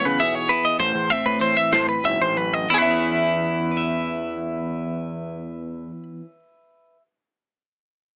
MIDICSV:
0, 0, Header, 1, 5, 480
1, 0, Start_track
1, 0, Key_signature, 4, "major"
1, 0, Tempo, 609137
1, 627, Time_signature, 6, 3, 24, 8
1, 1606, Tempo, 668151
1, 6007, End_track
2, 0, Start_track
2, 0, Title_t, "Clean electric guitar"
2, 0, Program_c, 0, 27
2, 42, Note_on_c, 0, 71, 66
2, 156, Note_on_c, 0, 76, 71
2, 158, Note_off_c, 0, 71, 0
2, 277, Note_off_c, 0, 76, 0
2, 277, Note_on_c, 0, 73, 67
2, 389, Note_on_c, 0, 71, 71
2, 393, Note_off_c, 0, 73, 0
2, 508, Note_off_c, 0, 71, 0
2, 510, Note_on_c, 0, 75, 69
2, 624, Note_off_c, 0, 75, 0
2, 628, Note_on_c, 0, 72, 82
2, 868, Note_off_c, 0, 72, 0
2, 868, Note_on_c, 0, 76, 72
2, 988, Note_off_c, 0, 76, 0
2, 992, Note_on_c, 0, 71, 58
2, 1111, Note_off_c, 0, 71, 0
2, 1114, Note_on_c, 0, 72, 70
2, 1234, Note_off_c, 0, 72, 0
2, 1236, Note_on_c, 0, 76, 61
2, 1357, Note_off_c, 0, 76, 0
2, 1360, Note_on_c, 0, 72, 77
2, 1482, Note_off_c, 0, 72, 0
2, 1487, Note_on_c, 0, 71, 63
2, 1609, Note_off_c, 0, 71, 0
2, 1615, Note_on_c, 0, 76, 69
2, 1726, Note_off_c, 0, 76, 0
2, 1734, Note_on_c, 0, 72, 67
2, 1847, Note_off_c, 0, 72, 0
2, 1847, Note_on_c, 0, 71, 72
2, 1964, Note_off_c, 0, 71, 0
2, 1964, Note_on_c, 0, 75, 63
2, 2080, Note_off_c, 0, 75, 0
2, 2083, Note_on_c, 0, 64, 63
2, 2111, Note_on_c, 0, 68, 66
2, 2139, Note_off_c, 0, 68, 0
2, 2139, Note_on_c, 0, 71, 60
2, 2168, Note_on_c, 0, 76, 60
2, 4387, Note_off_c, 0, 64, 0
2, 4472, Note_off_c, 0, 71, 0
2, 4472, Note_off_c, 0, 76, 0
2, 6007, End_track
3, 0, Start_track
3, 0, Title_t, "Clean electric guitar"
3, 0, Program_c, 1, 27
3, 0, Note_on_c, 1, 52, 62
3, 0, Note_on_c, 1, 59, 55
3, 0, Note_on_c, 1, 64, 61
3, 158, Note_on_c, 1, 68, 52
3, 392, Note_off_c, 1, 64, 0
3, 395, Note_on_c, 1, 64, 56
3, 598, Note_off_c, 1, 68, 0
3, 622, Note_on_c, 1, 45, 75
3, 646, Note_off_c, 1, 59, 0
3, 876, Note_on_c, 1, 60, 55
3, 1093, Note_off_c, 1, 52, 0
3, 1102, Note_on_c, 1, 52, 62
3, 1346, Note_off_c, 1, 45, 0
3, 1355, Note_on_c, 1, 45, 60
3, 1603, Note_off_c, 1, 45, 0
3, 1606, Note_on_c, 1, 44, 60
3, 1836, Note_off_c, 1, 44, 0
3, 1839, Note_on_c, 1, 42, 59
3, 1861, Note_off_c, 1, 64, 0
3, 2053, Note_off_c, 1, 60, 0
3, 2077, Note_off_c, 1, 42, 0
3, 2086, Note_on_c, 1, 40, 59
3, 2112, Note_off_c, 1, 52, 0
3, 2121, Note_on_c, 1, 52, 61
3, 2159, Note_on_c, 1, 61, 61
3, 2192, Note_on_c, 1, 64, 53
3, 2228, Note_on_c, 1, 68, 52
3, 2807, Note_off_c, 1, 64, 0
3, 2810, Note_on_c, 1, 71, 65
3, 2848, Note_off_c, 1, 68, 0
3, 2851, Note_on_c, 1, 76, 63
3, 4600, Note_off_c, 1, 40, 0
3, 4635, Note_off_c, 1, 52, 0
3, 4673, Note_off_c, 1, 61, 0
3, 5143, Note_off_c, 1, 71, 0
3, 5184, Note_off_c, 1, 76, 0
3, 6007, End_track
4, 0, Start_track
4, 0, Title_t, "Picked electric bass"
4, 0, Program_c, 2, 34
4, 45, Note_on_c, 2, 49, 86
4, 150, Note_off_c, 2, 49, 0
4, 160, Note_on_c, 2, 35, 80
4, 371, Note_off_c, 2, 35, 0
4, 628, Note_on_c, 2, 33, 81
4, 736, Note_off_c, 2, 33, 0
4, 748, Note_on_c, 2, 40, 86
4, 856, Note_off_c, 2, 40, 0
4, 990, Note_on_c, 2, 45, 87
4, 1211, Note_off_c, 2, 45, 0
4, 1358, Note_on_c, 2, 45, 87
4, 1470, Note_off_c, 2, 45, 0
4, 1607, Note_on_c, 2, 30, 88
4, 1712, Note_off_c, 2, 30, 0
4, 1730, Note_on_c, 2, 33, 83
4, 2053, Note_off_c, 2, 33, 0
4, 2081, Note_on_c, 2, 40, 84
4, 4386, Note_off_c, 2, 40, 0
4, 6007, End_track
5, 0, Start_track
5, 0, Title_t, "Drums"
5, 166, Note_on_c, 9, 42, 64
5, 245, Note_off_c, 9, 42, 0
5, 396, Note_on_c, 9, 42, 59
5, 475, Note_off_c, 9, 42, 0
5, 630, Note_on_c, 9, 36, 104
5, 631, Note_on_c, 9, 42, 87
5, 709, Note_off_c, 9, 36, 0
5, 710, Note_off_c, 9, 42, 0
5, 866, Note_on_c, 9, 42, 61
5, 868, Note_on_c, 9, 36, 66
5, 945, Note_off_c, 9, 42, 0
5, 947, Note_off_c, 9, 36, 0
5, 1113, Note_on_c, 9, 42, 62
5, 1192, Note_off_c, 9, 42, 0
5, 1357, Note_on_c, 9, 42, 89
5, 1363, Note_on_c, 9, 38, 103
5, 1436, Note_off_c, 9, 42, 0
5, 1442, Note_off_c, 9, 38, 0
5, 1608, Note_on_c, 9, 42, 60
5, 1680, Note_off_c, 9, 42, 0
5, 1843, Note_on_c, 9, 42, 57
5, 1915, Note_off_c, 9, 42, 0
5, 6007, End_track
0, 0, End_of_file